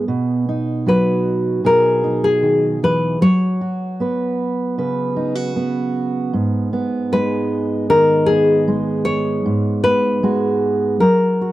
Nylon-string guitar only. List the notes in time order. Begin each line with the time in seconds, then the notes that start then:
0.88 B4
1.66 A#4
2.24 G#4
2.84 B4
3.22 C#5
7.13 B4
7.90 A#4
8.26 G#4
9.05 C#5
9.84 B4
11.00 A#4